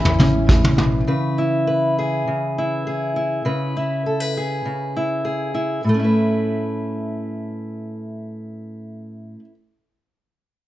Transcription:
Already playing: upright bass A1, steel-string acoustic guitar A2 E3 C#4 E4 B4
0.05 floor tom
0.19 steel-string acoustic guitar C#4, mid tom
0.47 steel-string acoustic guitar A2, kick, floor tom
0.64 mid tom
0.77 steel-string acoustic guitar B2, mid tom
1.07 steel-string acoustic guitar C#3 B4
1.38 steel-string acoustic guitar E4
1.67 steel-string acoustic guitar B4
1.99 steel-string acoustic guitar G#4
2.27 steel-string acoustic guitar C#3
2.58 steel-string acoustic guitar E4
2.87 steel-string acoustic guitar G#4
3.16 steel-string acoustic guitar E4
3.45 steel-string acoustic guitar C#3 B4
3.77 steel-string acoustic guitar E4
4.06 steel-string acoustic guitar A4
4.20 steel-string acoustic guitar B4
4.37 steel-string acoustic guitar G#4
4.65 steel-string acoustic guitar C#3
4.97 steel-string acoustic guitar E4
5.25 steel-string acoustic guitar G#4
5.54 steel-string acoustic guitar E4
5.84 steel-string acoustic guitar A2
5.89 steel-string acoustic guitar A3
5.94 steel-string acoustic guitar C#4
6.00 steel-string acoustic guitar E4
6.04 steel-string acoustic guitar B4

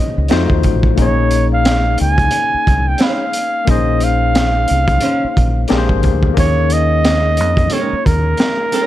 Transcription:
Already playing: tine electric piano A#3 C#4 D#4 G#4 C5 C#5, flugelhorn D#5
0.18 fingered electric bass C#2
0.28 fingered electric bass F2, nylon-string guitar A3 D#4 F#4 C5, tine electric piano A3 D#4 F4 F#4, snare, closed hi-hat
0.33 tine electric piano C5
0.50 fingered electric bass D#2, kick
0.63 fingered electric bass A1, kick, closed hi-hat
0.83 kick
0.96 fingered electric bass A#1, tine electric piano A#3 C#4 D#4, flugelhorn C#5, kick, closed hi-hat
1.01 tine electric piano G#4 C#5
1.31 closed hi-hat
1.53 flugelhorn F5
1.65 snare, closed hi-hat
1.98 fingered electric bass C#2, flugelhorn G#5, closed hi-hat
2.18 kick, closed hi-hat
2.31 closed hi-hat
2.54 muted fingered electric bass stroke
2.67 fingered electric bass C2, kick, closed hi-hat
2.88 flugelhorn G5
2.98 nylon-string guitar C#4 D#4 G#4 C5, snare, closed hi-hat
3.03 flugelhorn F5
3.33 closed hi-hat
3.65 fingered electric bass A#1, tine electric piano A#3 C#4 D#4, kick, closed hi-hat
3.70 tine electric piano G#4 C5, flugelhorn D#5
4.00 flugelhorn F5, closed hi-hat
4.35 snare, closed hi-hat
4.68 fingered electric bass C2, closed hi-hat
4.88 kick, closed hi-hat
5.01 nylon-string guitar C#4 D#4 G#4 C5, closed hi-hat
5.24 muted fingered electric bass stroke
5.37 fingered electric bass A#1, kick, closed hi-hat
5.68 fingered electric bass A#1, nylon-string guitar G#3 D4 G4 C5, tine electric piano A#3 D4 G4 G#4 A#4, snare, closed hi-hat
5.78 tine electric piano C5
5.89 fingered electric bass G#1, kick
6.03 fingered electric bass D2, kick, closed hi-hat
6.23 kick
6.34 fingered electric bass D#2, tine electric piano A#3 C#4 D#4, kick, closed hi-hat
6.39 tine electric piano G4 C#5, flugelhorn C#5
6.46 tine electric piano G#4
6.70 flugelhorn D#5, closed hi-hat
7.05 snare, closed hi-hat
7.37 fingered electric bass F2, closed hi-hat
7.57 kick, closed hi-hat
7.70 nylon-string guitar G#3 C#4 D#4 A#4, flugelhorn C#5, closed hi-hat
7.93 muted fingered electric bass stroke
8.06 fingered electric bass D#2, flugelhorn A#4, kick, closed hi-hat
8.37 muted nylon-string guitar stroke, snare, closed hi-hat
8.72 nylon-string guitar G#3 C#4 D#4 A#4, closed hi-hat

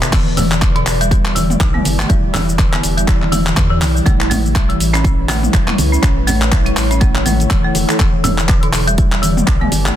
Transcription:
Already playing: ambient pad B4 D5, swell
0.02 marimba D3, clap, closed hi-hat, cabasa
0.12 sub bass E1, marimba E3, ambient pad E4 G4, kick, clap, closed hi-hat, crash, high conga, cabasa
0.37 marimba E3, open hi-hat, mid tom, muted conga, low conga, cabasa
0.52 clap, cabasa
0.62 marimba D3, kick, clap, closed hi-hat, cabasa
0.76 marimba B2, closed hi-hat, muted conga
0.86 sub bass E1, clap, open hi-hat, cabasa
1.01 marimba G3, closed hi-hat, cabasa
1.11 marimba G3, kick, closed hi-hat, muted conga, high conga, cabasa
1.25 clap
1.36 marimba E3, open hi-hat, high conga, cabasa
1.50 mid tom, muted conga, cabasa
1.60 sub bass B1, marimba D3, kick, clap, closed hi-hat, low conga, cabasa
1.74 marimba B3, mid tom
1.85 sub bass G1, open hi-hat, muted conga, high conga, cabasa
1.99 marimba A3, clap, cabasa
2.09 sub bass E1, marimba G3, kick, closed hi-hat, high conga, cabasa
2.33 marimba E3, clap, open hi-hat, muted conga, low conga, cabasa
2.49 cabasa
2.58 marimba D3, kick, clap, closed hi-hat, cabasa
2.72 marimba B3, clap, closed hi-hat, muted conga
2.83 sub bass E1, open hi-hat, cabasa
2.98 marimba G3, closed hi-hat, cabasa
3.08 marimba E3, kick, clap, closed hi-hat, muted conga, cabasa
3.22 clap, high conga
3.32 marimba E3, open hi-hat, mid tom, high conga, cabasa
3.47 clap, muted conga, cabasa
3.57 sub bass E2, marimba D3, kick, clap, closed hi-hat, high conga, cabasa
3.70 marimba E3
3.81 sub bass B1, clap, open hi-hat, muted conga, high conga, cabasa
3.95 marimba G3, cabasa
4.06 sub bass A1, marimba A3, ambient pad A3 B4 C#5, kick, closed hi-hat, high conga, cabasa
4.21 clap
4.30 marimba A3, open hi-hat, mid tom, muted conga, low conga, cabasa
4.46 cabasa
4.55 marimba G3, kick, clap, closed hi-hat, cabasa
4.69 marimba E3, closed hi-hat, muted conga
4.80 sub bass A1, open hi-hat, cabasa
4.93 marimba C#4, clap, closed hi-hat, cabasa
5.04 marimba C#4, kick, closed hi-hat, muted conga, high conga, cabasa
5.29 marimba A3, clap, open hi-hat, high conga, cabasa
5.43 mid tom, muted conga, cabasa
5.53 sub bass E1, marimba G3, kick, clap, closed hi-hat, low conga, cabasa
5.68 marimba E4, clap, mid tom
5.78 sub bass C#2, open hi-hat, muted conga, high conga, cabasa
5.92 marimba C#4, cabasa
6.02 sub bass A1, marimba C#4, ambient pad A4, kick, clap, closed hi-hat, high conga, cabasa
6.27 marimba A3, open hi-hat, muted conga, low conga, cabasa
6.42 clap, cabasa
6.52 marimba G3, kick, clap, closed hi-hat, cabasa
6.66 marimba E4, closed hi-hat, muted conga
6.77 sub bass A1, clap, open hi-hat, cabasa
6.91 marimba C#4, closed hi-hat, cabasa
7.01 marimba A3, kick, closed hi-hat, muted conga, cabasa
7.15 clap, high conga
7.26 marimba A3, open hi-hat, mid tom, high conga, cabasa
7.40 closed hi-hat, muted conga, cabasa
7.50 sub bass E1, marimba E3, kick, clap, closed hi-hat, mid tom, high conga, cabasa
7.64 marimba A3
7.75 sub bass E1, open hi-hat, muted conga, high conga, cabasa
7.89 marimba A4, clap, cabasa
7.99 sub bass E1, marimba E3, ambient pad G4 D5, kick, clap, closed hi-hat, high conga, cabasa
8.24 marimba E3, open hi-hat, mid tom, muted conga, low conga, cabasa
8.38 clap, cabasa
8.49 marimba D3, kick, clap, closed hi-hat, cabasa
8.63 marimba B2, closed hi-hat, muted conga
8.73 sub bass E1, clap, open hi-hat, cabasa
8.87 marimba G3, closed hi-hat, cabasa
8.98 marimba G3, kick, closed hi-hat, muted conga, high conga, cabasa
9.12 clap
9.22 marimba E3, open hi-hat, high conga, cabasa
9.37 mid tom, muted conga, cabasa
9.47 sub bass B1, marimba D3, kick, clap, closed hi-hat, low conga, cabasa
9.61 marimba B3, mid tom
9.72 sub bass G1, open hi-hat, muted conga, high conga, cabasa
9.86 marimba A3, clap, cabasa

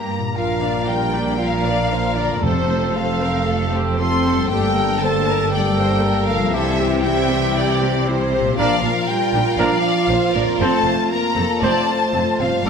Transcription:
Already playing: double bass section G2, harp G2 G3 A#3 D4 G4, viola section A#3, french horn section A#3, violin section G4 A#5, flute A#5
0.18 harp A#2
0.23 harp A#3
0.27 harp D4
0.32 double bass section A#1, trombone section A#2 D4, harp F4
0.36 cello section A#2, french horn section F3, viola section F4 A#4, trumpet A#4, flute F5, violin section F5
0.62 viola section D4 D5
0.87 french horn section G3, viola section F4 A#4, flute G5, violin section G5
1.13 viola section D4 D5
1.38 trombone section A#2 D4, french horn section F3, viola section F4 A#4, trumpet A#4, violin section A#4 F5, flute F5
1.64 viola section D4 D5, violin section D5
1.91 viola section F4 A#4, violin section C5
2.16 french horn section D3, viola section D4 D5, violin section A#4 D5, flute D5
2.25 harp F2
2.29 harp F3
2.34 harp C4
2.38 french horn section C3, harp F4
2.42 double bass section F1, timpani F2, cello section F2, trombone section C3 C4, viola section A3 A4, violin section A4 C5, trumpet A4, flute C5
2.69 viola section C4 C5
2.95 trombone section C3 C4, french horn section F3, viola section A3 A4, trumpet A4, violin section C5 F5, flute F5
3.21 viola section C4 C5, violin section A#4
3.46 viola section A3 A4, violin section A4
3.71 viola section C4 C5, violin section G4
3.96 trombone section C3 C4, viola section A3 A4, french horn section C4, violin section F4 C6, trumpet A4, flute C6
4.24 viola section C4 C5, violin section A4
4.32 harp G2
4.36 harp G3
4.41 harp A#3
4.45 double bass section G1, cello section G2, trombone section D3 A#3, viola section A3 A4, harp D4, flute G5
4.50 french horn section G3, violin section G4 G5, trumpet A4
4.74 viola section A#3 A#4, violin section A#4
4.99 trombone section D3 A#3, viola section A3 A4, french horn section A4, trumpet A4, violin section C5 A5, flute A5
5.26 viola section A#3 A#4, violin section A#4
5.50 trombone section D3 A#3, french horn section G3, viola section A3 A4, trumpet A4, violin section D5 G5, flute G5
5.76 viola section A#3 A#4, violin section C5
6.02 viola section A3 A4, violin section A#4
6.27 french horn section F3, viola section A#3 A#4, violin section F5, flute F5
6.36 harp C3
6.41 harp G3
6.45 harp C4
6.49 trombone section E3 C4, harp E4, violin section E5
6.54 double bass section C2, cello section C3, french horn section E3, viola section G3 E4, trumpet G4, violin section A4, flute E5
6.80 viola section C4 G4, violin section G4
7.03 trombone section E3 C4, viola section G3 E4, trumpet G4, violin section E5 G5, flute G5
7.07 french horn section G3
7.31 viola section C4 G4
7.56 viola section G3 E4, violin section D5
7.82 viola section C4 G4
8.06 viola section G3 E4, violin section C5
8.33 viola section C4 G4
8.40 harp A#2
8.44 harp A#3
8.49 harp D4
8.54 double bass section A#1, trombone section F3 D4, french horn section F3, harp F4, flute F5
8.58 cello section A#2, viola section D4 F4, trumpet A#4, violin section D5 F5
8.82 double bass section A#1, cello section A#2, viola section D4, violin section A#4
9.08 french horn section G3, violin section G5, flute G5
9.33 double bass section A#1, cello section A#2, viola section D4
9.58 double bass section A#1, cello section A#2, french horn section F3, trombone section F3 D4, viola section D4, trumpet A#4, violin section D5 F5, flute F5
10.09 double bass section A#1, cello section A#2, viola section D4, violin section C5
10.33 double bass section A#1, cello section A#2, french horn section D3, viola section D4, violin section A#4 D5, flute D5
10.43 harp F2
10.48 harp C4
10.52 harp F4
10.59 double bass section F1, cello section F2, trombone section F3 C4, french horn section A3, viola section C4, violin section A4 A5, trumpet C5, flute A5
10.84 double bass section F1, cello section F2, viola section C4, violin section C5
11.11 french horn section A#3, violin section A#4 A#5, flute A#5
11.35 double bass section F1, cello section F2, viola section C4, violin section A4
11.60 double bass section F1, cello section F2, trombone section F3 C4, french horn section A3, viola section C4, trumpet C5, violin section D5 A5, flute A5
11.87 violin section C5
12.13 double bass section F1, cello section F2, viola section C4
12.40 double bass section F1, cello section F2, french horn section F3, viola section C4, violin section F5, flute F5
12.48 harp G2
12.52 harp A#3
12.57 harp D4
12.61 double bass section G1, trombone section G3 A#3, violin section A#4, harp A5
12.66 cello section G2, french horn section D4, trumpet A4, flute D6

